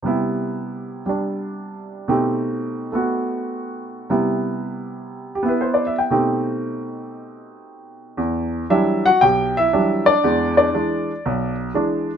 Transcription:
X:1
M:4/4
L:1/16
Q:"Swing" 1/4=118
K:Em
V:1 name="Grand piano"
z16 | z16 | z8 z2 G B c d e g | z16 |
z4 [Ee]2 [Ff]2 [Gg]2 [Ee]4 [Dd]2- | [Dd]2 [Dd]8 z6 |]
V:2 name="Grand piano" clef=bass
[C,G,B,E]8 [G,D]8 | [B,,A,C^DG]6 [A,B,F]8- [A,B,F]2 | [C,G,B,E]8- [C,G,B,E]2 [B,E]6 | [B,,A,C^DG]16 |
E,,4 [E,F,G,D]2 z2 B,,,4 [E,F,G,D]2 z2 | [E,,^G,]4 [E,G,D]2 z2 B,,,4 [E,G,D]2 z2 |]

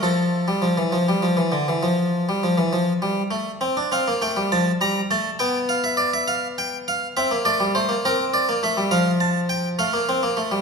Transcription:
X:1
M:12/8
L:1/16
Q:3/8=68
K:F
V:1 name="Harpsichord"
A16- A6 z2 | z2 f2 g2 a2 b2 a2 g2 f e d e f2 g2 f2 | e2 d2 c2 B2 d2 e2 f2 a2 g2 f6 |]
V:2 name="Harpsichord" clef=bass
F,3 G, F, E, F, G, F, E, D, E, F,3 G, F, E, F,2 G,2 A,2 | C D C B, A, G, F,2 G,2 A,2 =B,12 | C B, A, G, A, B, C3 B, A, G, F,6 A, B, C B, A, G, |]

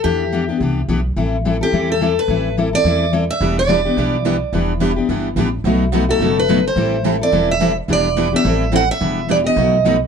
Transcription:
X:1
M:4/4
L:1/8
Q:"Swing" 1/4=214
K:Em
V:1 name="Steel-string acoustic guitar"
G4 z4 | z3 G2 A2 B- | B2 z d3 z e- | e d6- d- |
d z6 z | z3 A2 B2 c- | c2 z d2 e2 z | d3 e3 f e- |
e2 d ^d4 z |]
V:2 name="Steel-string acoustic guitar"
z8 | z8 | z8 | [E,G,DEB] z [E,G,DEB] z [E,G,DEB] z [E,G,DEB] z |
[E,G,DEB] z [E,G,DEB] z [E,G,DEB] z [E,G,DEB] z | [B,,F,A,^DFB] z [B,,F,A,DFB] z [B,,F,A,DFB] z [B,,F,A,DFB] z | [E,G,CEA] z [E,G,CEA] z [E,G,CEA] z [E,G,CEA] z | [E,G,DEB] z [E,G,DEB] z [E,G,CEA] z [E,G,CEA] z |
[E,G,DEB] z [E,G,DEB] z [B,,F,A,^DFB] z [B,,F,A,DFB] z |]
V:3 name="Steel-string acoustic guitar"
[E,B,DG] z [E,B,DG] [B,DG] [E,B,DG] z [E,B,DG] z | [E,G,CEA] z [E,G,CEA] [CEA] [E,G,CEA] z [E,G,CEA] z | [E,G,CEA] z [E,G,CEA] [CEA] [E,G,CEA] z [E,G,CEA] z | [E,B,DG] z [E,B,DG] [B,DG] [E,B,DG] z [E,B,DG] z |
[E,B,DG] z [E,B,DG] [B,DG] [E,B,DG] z [E,B,DG] z | [B,,F,A,^DF] z [B,,F,A,DF] [A,DF] [B,,F,A,DF] z [B,,F,A,DF] z | [E,G,CEA] z [E,G,CEA] [CEA] [E,G,CEA] z [E,G,CEA] z | [E,B,DG] z [E,B,DG] [B,DG] [E,G,CEA] z [E,G,CEA] z |
[E,B,DG] z [E,B,DG] [B,DG] [B,,F,A,^DF] z [B,,F,A,DF] z |]
V:4 name="Upright bass" clef=bass
E,,4 C,,2 B,,,2 | A,,,4 E,,4 | A,,,4 E,,4 | E,,,4 B,,,4 |
E,,,4 G,,,2 A,,,2 | B,,,4 F,,,4 | A,,,4 E,,,4 | E,,,4 A,,,4 |
E,,,4 B,,,4 |]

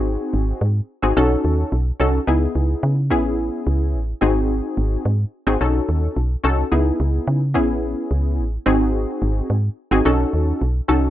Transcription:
X:1
M:4/4
L:1/16
Q:1/4=108
K:G#phr
V:1 name="Analog polysynth"
[^B,DFG]4 z3 [B,DFG] [CDFA]4 z2 [CDFA] z | [B,DEG]4- [B,DEG] z [B,CEG]6 z2 [^B,DFG]2- | [^B,DFG]4 z3 [B,DFG] [CDFA]4 z2 [CDFA] z | [B,DEG]4- [B,DEG] z [B,CEG]6 z2 [^B,DFG]2- |
[^B,DFG]4 z3 [B,DFG] [CDFA]4 z2 [CDFA] z |]
V:2 name="FM bass" clef=bass
G,,,2 G,,,2 G,,2 z G,,, B,,,2 D,,2 B,,,2 ^B,,,2 | C,,2 C,,2 C,2 A,,,4 C,,2 A,,,2 G,,,2- | G,,,2 G,,,2 G,,2 z G,,, B,,,2 D,,2 B,,,2 ^B,,,2 | C,,2 C,,2 C,2 A,,,4 C,,2 A,,,2 G,,,2- |
G,,,2 G,,,2 G,,2 z G,,, B,,,2 D,,2 B,,,2 ^B,,,2 |]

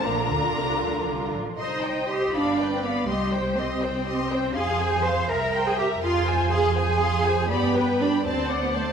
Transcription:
X:1
M:6/8
L:1/16
Q:3/8=81
K:Bb
V:1 name="Violin section"
b8- b2 z2 | [K:Cm] c'2 g2 c'2 =b2 g2 b2 | c'2 g2 c'2 g2 c'2 g2 | c'2 a2 c'2 b2 g2 b2 |
c'2 a2 c'2 a2 c'2 a2 | =b2 g2 b2 =a2 ^f2 a2 |]
V:2 name="Violin section"
[FB]8- [FB]2 z2 | [K:Cm] e2 c2 e2 f2 d2 f2 | e2 c2 e2 c2 e2 c2 | f2 a2 f2 =e2 g2 e2 |
f2 a2 f2 a2 f2 a2 | d2 =B2 d2 d2 c2 d2 |]
V:3 name="Viola section"
[D,D]8- [D,D]2 z2 | [K:Cm] c2 e2 c2 d2 =B2 d2 | G2 c2 G2 c2 G2 c2 | A2 c2 A2 B2 c2 B2 |
A2 c2 A2 c2 A2 c2 | G2 =B2 G2 c2 d2 c2 |]
V:4 name="Cello section"
B,,2 D,2 C,2 F,2 D,2 F,2 | [K:Cm] E4 G2 D3 C =B,2 | G,4 C2 C6 | A4 c2 B3 A G2 |
F4 A2 A6 | =B,4 D2 C3 B, =A,2 |]
V:5 name="Double bass section" clef=bass
B,,,2 D,,2 C,,2 D,,2 C,,2 A,,,2 | [K:Cm] C,,6 G,,,6 | C,,12 | F,,6 C,,6 |
F,,12 | G,,6 D,,6 |]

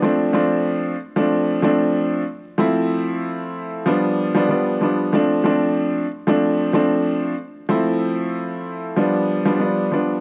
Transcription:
X:1
M:4/4
L:1/16
Q:"Swing 16ths" 1/4=94
K:Ddor
V:1 name="Upright piano"
[F,A,CD]2 [F,A,CD]4 z [F,A,CD]3 [F,A,CD]4 z2 | [F,A,CE]8 [F,G,B,D]3 [F,G,B,D] [F,G,B,D]2 [F,G,B,D]2 | [F,A,CD]2 [F,A,CD]4 z [F,A,CD]3 [F,A,CD]4 z2 | [F,A,CE]8 [F,G,B,D]3 [F,G,B,D] [F,G,B,D]2 [F,G,B,D]2 |]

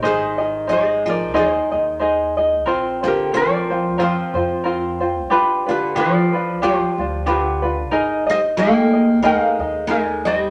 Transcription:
X:1
M:4/4
L:1/16
Q:"Swing" 1/4=91
K:Ablyd
V:1 name="Ukulele"
[Ac]4 [ce]2 [Bd]2 [Ac]4 z4 | z2 [GB]2 [Bd]4 [Fc]6 z2 | z2 [G=B]2 [Bd]4 [Gc]4 [GB]3 z | z2 [ce]2 [eg]4 [Bf]4 [Bd]2 [ce]2 |]
V:2 name="Ukulele"
[EAce]2 [EAe]2 [EAce]2 [EA]2 [EAce]2 [EAe]2 [EAce]2 [EAe]2 | [CFBc]2 [CFc]2 [CFBc]2 [CFc]2 [CFBc]2 [CFc]2 [CFBc]2 [CFc]2 | [DFG=B]2 [DFB]2 [DFGB]2 [DFB]2 [DFG]2 [DF]2 [DFGB]2 [DFB]2 | [EABe]2 [Ee]2 [EABe]2 [EAe]2 [EABe]2 [EAe]2 [EAB]2 [Ee]2 |]
V:3 name="Steel-string acoustic guitar" clef=bass
E,4 A,2 F,2 E,4 z4 | z2 D,2 F,4 F,6 z2 | z2 D,2 F,4 F,4 D,3 z | z2 G,2 B,4 A,4 A,2 G,2 |]
V:4 name="Upright bass" clef=bass
A,,,8 E,,2 E,,6 | B,,,8 F,,2 F,,6 | G,,,8 D,,2 D,,6 | A,,,8 E,,2 E,,6 |]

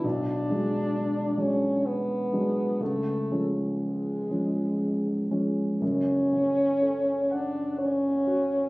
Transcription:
X:1
M:3/4
L:1/8
Q:1/4=61
K:F#m
V:1 name="French horn"
D3 C B,2 | A, z G,3 z | C3 D C2 |]
V:2 name="Grand piano" clef=bass
B,,, [F,G,D]2 [F,G,D]2 [F,G,D] | C,, [^E,G,C]2 [E,G,C]2 [E,G,C] | [F,,,F,,] C, A f c F |]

